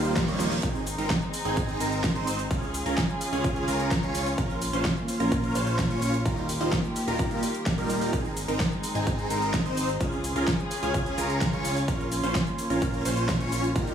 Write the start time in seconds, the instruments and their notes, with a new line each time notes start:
Already playing: analog synth bass D#1, string section D#3 A#3 F4 G4, supersaw synth G3 A#3 D#4 F4 C5, reverse cymbal
0.05 closed hi-hat, shaker
0.16 kick, snare, closed hi-hat, shaker
0.28 analog synth bass D#1, supersaw synth G3 A#3 D#4 F4 C#5, snare, closed hi-hat, shaker
0.40 snare, open hi-hat, shaker
0.52 snare, open hi-hat, shaker
0.63 analog synth bass G#1, string section G#3 C4 D#4, supersaw synth C4 D#4 G#4, kick, closed hi-hat, shaker
0.75 shaker
0.87 open hi-hat, shaker
0.98 analog synth bass G#1, supersaw synth C4 D#4 A#4, closed hi-hat, shaker
1.10 kick, snare, closed hi-hat, shaker
1.22 shaker
1.34 open hi-hat, shaker
1.45 analog synth bass G#1, supersaw synth C4 D#4 G#4, closed hi-hat, shaker
1.57 kick, closed hi-hat, shaker
1.69 closed hi-hat, shaker
1.80 analog synth bass G#1, supersaw synth C4 D#4 A#4, open hi-hat, shaker
1.92 closed hi-hat, shaker
2.04 kick, snare, closed hi-hat, shaker
2.15 analog synth bass G#1, supersaw synth C4 D#4 C5, closed hi-hat, shaker
2.27 open hi-hat, shaker
2.39 closed hi-hat, shaker
2.51 analog synth bass C#2, string section C#3 C#4 F4 G#4, supersaw synth C#4 F4 G#4, kick, closed hi-hat, shaker
2.62 shaker
2.74 open hi-hat, shaker
2.86 analog synth bass C#2, supersaw synth C#4 F4 A#4, closed hi-hat, shaker
2.98 kick, snare, closed hi-hat, shaker
3.09 shaker
3.21 open hi-hat, shaker
3.33 analog synth bass C#2, supersaw synth C#4 F4 G#4, closed hi-hat, shaker
3.44 kick, closed hi-hat, shaker
3.56 closed hi-hat, shaker
3.68 analog synth bass C#2, supersaw synth C#4 F4 A#4, open hi-hat, shaker
3.80 closed hi-hat, shaker
3.91 kick, snare, closed hi-hat, shaker
4.03 analog synth bass C#2, supersaw synth C#4 F4 C#5, closed hi-hat, shaker
4.15 open hi-hat, shaker
4.26 open hi-hat, shaker
4.38 analog synth bass A#1, string section A#3, supersaw synth C#4 F4 A#4, kick, closed hi-hat, shaker
4.50 shaker
4.62 open hi-hat, shaker
4.73 analog synth bass A#1, supersaw synth C#4 F4 C5, closed hi-hat, shaker
4.85 kick, snare, closed hi-hat, shaker
4.97 shaker
5.08 open hi-hat, shaker
5.20 analog synth bass A#1, supersaw synth C#4 F4 A#4, closed hi-hat, shaker
5.32 kick, closed hi-hat, shaker
5.44 closed hi-hat, shaker
5.55 analog synth bass A#1, supersaw synth C#4 F4 C5, open hi-hat, shaker
5.67 closed hi-hat, shaker
5.79 kick, snare, closed hi-hat, shaker
5.90 analog synth bass A#1, supersaw synth C#4 F4 C#5, closed hi-hat, shaker
6.02 open hi-hat, shaker
6.14 closed hi-hat, shaker
6.25 analog synth bass D#1, string section D#3 A#3 G4, supersaw synth G3 A#3 D#4 F4 A#4, kick, closed hi-hat, shaker
6.37 shaker
6.49 open hi-hat, shaker
6.61 analog synth bass D#1, supersaw synth G3 A#3 D#4 F4 C5, closed hi-hat, shaker
6.72 kick, snare, closed hi-hat, shaker
6.84 shaker
6.96 open hi-hat, shaker
7.08 analog synth bass D#1, supersaw synth G3 A#3 D#4 F4 A#4, closed hi-hat, shaker
7.19 kick, closed hi-hat, shaker
7.31 closed hi-hat, shaker
7.43 open hi-hat, shaker
7.55 closed hi-hat, shaker
7.66 kick, snare, closed hi-hat, shaker
7.78 analog synth bass D#1, supersaw synth G3 A#3 D#4 F4 A#4, closed hi-hat, shaker
7.90 open hi-hat, shaker
8.02 open hi-hat, shaker
8.13 analog synth bass G#1, string section G#3 C4 D#4, supersaw synth C4 D#4 G#4, kick, closed hi-hat, shaker
8.25 shaker
8.37 open hi-hat, shaker
8.48 analog synth bass G#1, supersaw synth C4 D#4 A#4, closed hi-hat, shaker
8.60 kick, snare, closed hi-hat, shaker
8.72 shaker
8.84 open hi-hat, shaker
8.95 analog synth bass G#1, supersaw synth C4 D#4 G#4, closed hi-hat, shaker
9.07 kick, closed hi-hat, shaker
9.19 closed hi-hat, shaker
9.30 analog synth bass G#1, supersaw synth C4 D#4 A#4, open hi-hat, shaker
9.42 closed hi-hat, shaker
9.54 kick, snare, closed hi-hat, shaker
9.65 analog synth bass G#1, supersaw synth C4 D#4 C5, closed hi-hat, shaker
9.77 open hi-hat, shaker
9.89 closed hi-hat, shaker
10.01 analog synth bass C#2, string section C#3 C#4 F4 G#4, supersaw synth C#4 F4 G#4, kick, closed hi-hat, shaker
10.12 shaker
10.24 open hi-hat, shaker
10.36 analog synth bass C#2, supersaw synth C#4 F4 A#4, closed hi-hat, shaker
10.47 kick, snare, closed hi-hat, shaker
10.59 shaker
10.71 open hi-hat, shaker
10.83 analog synth bass C#2, supersaw synth C#4 F4 G#4, closed hi-hat, shaker
10.94 kick, closed hi-hat, shaker
11.06 closed hi-hat, shaker
11.18 analog synth bass C#2, supersaw synth C#4 F4 A#4, open hi-hat, shaker
11.30 closed hi-hat, shaker
11.41 kick, snare, closed hi-hat, shaker
11.53 analog synth bass C#2, supersaw synth C#4 F4 C#5, closed hi-hat, shaker
11.65 open hi-hat, shaker
11.77 open hi-hat, shaker
11.88 analog synth bass A#1, string section A#3, supersaw synth C#4 F4 A#4, kick, closed hi-hat, shaker
12.00 shaker
12.12 open hi-hat, shaker
12.23 analog synth bass A#1, supersaw synth C#4 F4 C5, closed hi-hat, shaker
12.35 kick, snare, closed hi-hat, shaker
12.47 shaker
12.59 open hi-hat, shaker
12.70 analog synth bass A#1, supersaw synth C#4 F4 A#4, closed hi-hat, shaker
12.82 kick, closed hi-hat, shaker
12.94 closed hi-hat, shaker
13.05 analog synth bass A#1, supersaw synth C#4 F4 C5, open hi-hat, shaker
13.17 closed hi-hat, shaker
13.29 kick, snare, closed hi-hat, shaker
13.40 analog synth bass A#1, supersaw synth C#4 F4 C#5, closed hi-hat, shaker
13.52 open hi-hat, shaker
13.64 closed hi-hat, shaker
13.76 analog synth bass D#1, string section D#3 G4, supersaw synth G3 A#3 D#4 F4 A#4, kick, closed hi-hat, shaker
13.87 closed hi-hat, shaker